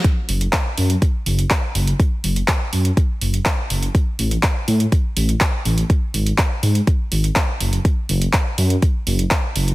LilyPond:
<<
  \new Staff \with { instrumentName = "Detuned saw bass" } { \clef bass \time 4/4 \key fis \minor \tempo 4 = 123 r8 fis,,8 r8 fis,8 r8 fis,,8 r8 fis,,8 | r8 fis,,8 r8 fis,8 r8 fis,,8 r8 fis,,8 | r8 a,,8 r8 a,8 r8 a,,8 r8 a,,8 | r8 gis,,8 r8 gis,8 r8 gis,,8 r8 fis,,8 |
r8 fis,,8 r8 fis,8 r8 fis,,8 r8 fis,,8 | }
  \new DrumStaff \with { instrumentName = "Drums" } \drummode { \time 4/4 <hh bd>8 hho16 hh16 <hc hh bd>8 hho16 hh16 <hh bd>8 hho16 hh16 <hc hh bd>8 hho16 hh16 | <hh bd>8 hho16 hh16 <hc hh bd>8 hho16 hh16 <hh bd>8 hho16 hh16 <hc hh bd>8 hho16 hh16 | <hh bd>8 hho16 hh16 <hc hh bd>8 hho16 hh16 <hh bd>8 hho16 hh16 <hc hh bd>8 hho16 hh16 | <hh bd>8 hho16 hh16 <hc hh bd>8 hho16 hh16 <hh bd>8 hho16 hh16 <hc hh bd>8 hho16 hh16 |
<hh bd>8 hho16 hh16 <hc hh bd>8 hho16 hh16 <hh bd>8 hho16 hh16 <hc hh bd>8 hho16 hh16 | }
>>